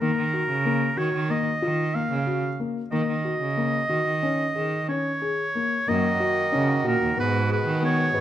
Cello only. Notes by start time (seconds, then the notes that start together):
0.01 D#3
0.18 D#3
0.49 C#3
0.98 D#3
1.14 D#3
1.63 D#3
2.11 C#3
2.92 D#3
3.08 D#3
3.41 C#3
3.90 D#3
4.06 D#3
4.55 D#3
5.88 F#2
6.54 C#3
6.86 A#2
7.02 D#2
7.17 G#2
7.67 D#3
8.15 G#2